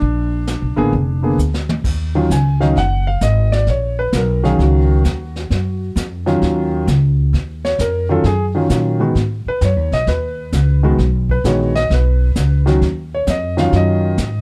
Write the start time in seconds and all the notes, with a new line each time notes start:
Already playing: D4
0.01 A#1, brush sweep, kick
0.47 snare, hi-hat pedal
0.62 B1
0.76 A1 D3 A#3 B3 G#4
0.93 F1, brush sweep, kick
1.23 D3 A#3 B3 G#4
1.38 D2, hi-hat pedal
1.54 snare
1.69 mid tom
1.84 D#2, brush sweep, kick, snare, crash
2.15 D#3 F#3 C#4 F4
2.30 C#2 G#5, kick, snare, hi-hat pedal
2.60 D#3 F#3 C#4 D#4 F5, snare
2.76 F#1 F#5, brush sweep, kick, snare
3.07 F5
3.21 G#1 D#5, kick, snare, hi-hat pedal
3.52 D5, snare
3.67 A#1 C#5, brush sweep, kick, snare
3.99 B4
4.13 B1 A#4, kick, snare, hi-hat pedal
4.44 D#3 F#3 C#4 G#4 F5, snare
4.59 C#2 F#4, brush sweep, kick, snare
5.04 D#2, kick, snare, hi-hat pedal
5.36 snare
5.50 F#2, brush sweep, kick, snare
5.96 F2, kick, snare, hi-hat pedal
6.26 D#3 F#3 C#4 F4, snare
6.42 D#2, brush sweep, kick, snare
6.87 C#2, kick, snare, hi-hat pedal
7.33 D#2, brush sweep, kick, snare
7.65 C#5, snare
7.79 F2 A#4, kick, snare, hi-hat pedal
8.09 D#3 F#3 C#4 F4 A4
8.24 F#2 G#4, brush sweep, kick, snare
8.55 D#3 F#3 C#4 F4
8.70 A#2, kick, snare, hi-hat pedal
9.00 D#3 G#3 B3 F#4
9.15 G#2, brush sweep, kick, snare
9.46 B4, muted upright bass stroke
9.61 F#2 C#5, kick, snare, hi-hat pedal
9.76 D#2
9.91 B1 D#5, snare
10.07 D#2 B4, brush sweep, kick, snare
10.53 C#2, kick, snare, hi-hat pedal
10.83 D#3 G#3 B3 F#4
10.98 B1, brush sweep, kick, snare
11.29 B4, kick
11.44 A#1 D#3 G#3 B3 F#4 C#5, kick, snare, hi-hat pedal
11.75 D#5, snare
11.90 B1 B4, brush sweep, kick, snare
12.35 C#2, kick, snare, hi-hat pedal
12.66 D#3 F#3 C#4 F#4, snare
12.81 D#2, brush sweep, kick, snare
13.15 C#5
13.27 F2 D#5, kick, snare, hi-hat pedal
13.57 D#3 F#3 C#4 F4 F5, snare
13.72 F#2 D#5, brush sweep, kick, snare
14.18 G#2, kick, snare, hi-hat pedal